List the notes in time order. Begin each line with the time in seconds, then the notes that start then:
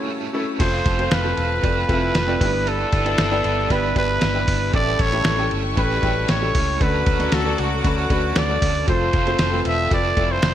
Already playing: A2 C#3 A3 C#4 E4 F#4 G4 A4 B4 C#5 A5 E6
0.07 A3 C#4 E4 A4
0.33 A3 C#4 E4 A4
0.59 F1 F3 A3 C4 F4 A4 C5 F5 A5, kick, crash, ride
0.85 F1 C4 F4 A4, kick, ride
0.98 A3 C4 F4 A4 C5, ride
1.10 F1 A3 C4 F4 A4 B4, snare, ride
1.24 A3 C4 F4 A4
1.37 E1 C4 F4 A4, ride
1.62 F1 F3 A3 C4 F4 A4 D5, kick, ride
1.88 F1 E3 A3 C4 E4 F4 A4, kick, ride
2.14 F1 A3 C4 F4 A4, snare, ride
2.27 A3 C4 F4 A4 D5
2.40 G1 G2 D3 B3 D4 E4 G4 B4 E5 B5, kick, open hi-hat, ride
2.66 G3 D4 E4 A4 B4, ride
2.92 G1 D4 E4 B4, kick, ride
3.04 B3 D4 E4 G4 D5, ride
3.18 G1 G3 D4 E4 B4, snare, ride
3.31 B3 D4 E4 G4 D5
3.44 G1 D4 E4 B4, ride
3.70 G1 G3 B3 D4 E4 G4 B4, kick, ride
3.95 G1 B3 D4 E4 G4 B4, kick, ride
4.21 G1 G3 D4 E4 B4, snare, ride
4.33 B3 D4 E4 G4 B4
4.47 G1 D4 E4 B4, kick, open hi-hat, ride
4.73 A1 A2 E3 G3 A3 C#4 E4 G4 A4 D5 G5 C#6, kick, ride
4.99 A1 G3 C#4 E4 A4 C#5, kick, ride
5.12 A3 C#4 E4 G4 B4, ride
5.24 A1 G3 C#4 E4 A4, snare, ride
5.37 A3 C#4 E4 G4 A4
5.50 G1 G3 C#4 E4 A4, ride
5.76 A1 A2 E3 G3 A3 C#4 E4 G4 A4 B4, kick, ride
6.02 A1 G3 A3 C#4 E4 G4 A4, kick, ride
6.28 A1 G3 C#4 E4 A4 C#5, snare, ride
6.41 A3 C#4 E4 G4 A4
6.54 C#2 G3 C#4 E4 A4, kick, open hi-hat, ride
6.80 D2 D3 F#3 A3 C#4 D4 F#4 A4 B4 F#5 D6, kick, ride
7.06 D2 C#4 F#4 A4, kick, ride
7.19 A3 C#4 D4 F#4 A4, snare, ride
7.32 D2 A3 C#4 F#4 A4, snare, ride
7.44 A3 C#4 D4 F#4 A4
7.58 C#2 C#4 F#4 A4, ride
7.83 D2 D3 A3 C#4 D4 F#4 A4 B4, kick, ride
8.09 D2 A3 C#4 D4 F#4 A4 B4, kick, ride
8.35 D2 A3 C#4 F#4 A4 D5, snare, ride
8.48 A3 D4 F#4 A4
8.61 D2 C#4 F#4 A4, kick, open hi-hat, ride
8.75 ride
8.87 F1 F3 A3 C4 F4 A4 C5 F5 A5, kick, ride
9.13 F1 C4 F4 A4, kick, ride
9.26 A3 C4 F4 A4 C5, ride
9.38 F1 A3 C4 F4 A4, snare, ride
9.52 A3 C4 F4 A4 B4
9.64 E1 C4 F4 A4 E5, ride
9.90 F1 F3 A3 C4 F4 A4 B4 D5, kick, ride
10.16 F1 E3 A3 C4 E4 F4 A4 D5, kick, ride
10.32 C5
10.42 F1 A3 C4 F4 A4, snare, ride